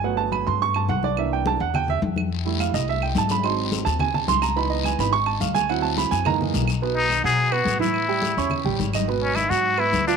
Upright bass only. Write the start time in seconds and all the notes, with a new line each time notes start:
Already playing: G1
0.47 G2
0.89 C2
1.60 E2
2.02 F2
2.74 C2
3.16 G#1
3.86 D#2
4.28 C#2
4.99 G#1
5.41 D2
6.11 F#2
6.54 B1
7.24 B2
7.66 A2
8.37 E2
8.65 A1
8.80 G#1
9.50 G#2
9.92 D2